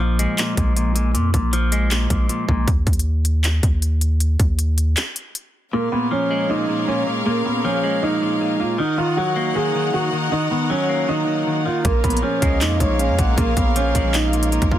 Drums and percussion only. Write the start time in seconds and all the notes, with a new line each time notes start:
0.19 closed hi-hat
0.38 clap, closed hi-hat
0.57 kick, closed hi-hat
0.77 closed hi-hat
0.96 closed hi-hat
1.15 closed hi-hat
1.34 kick, closed hi-hat
1.53 closed hi-hat
1.72 closed hi-hat
1.91 clap, closed hi-hat
2.10 kick, closed hi-hat
2.29 closed hi-hat
2.49 kick
2.68 kick, closed hi-hat
2.87 kick, closed hi-hat
2.93 closed hi-hat
2.99 closed hi-hat
3.25 closed hi-hat
3.44 clap, closed hi-hat
3.63 kick, closed hi-hat
3.82 closed hi-hat
4.01 closed hi-hat
4.20 closed hi-hat
4.40 kick, closed hi-hat
4.59 closed hi-hat
4.78 closed hi-hat
4.97 clap, closed hi-hat
5.16 closed hi-hat
5.35 closed hi-hat
11.85 kick, closed hi-hat
12.04 kick, closed hi-hat
12.10 closed hi-hat
12.17 closed hi-hat
12.42 kick, closed hi-hat
12.61 clap, closed hi-hat
12.80 kick, closed hi-hat
12.99 closed hi-hat
13.19 kick, closed hi-hat
13.38 kick, closed hi-hat
13.57 kick, closed hi-hat
13.76 closed hi-hat
13.95 kick, closed hi-hat
14.14 clap, closed hi-hat
14.33 closed hi-hat
14.43 closed hi-hat
14.52 closed hi-hat
14.62 kick, closed hi-hat
14.71 kick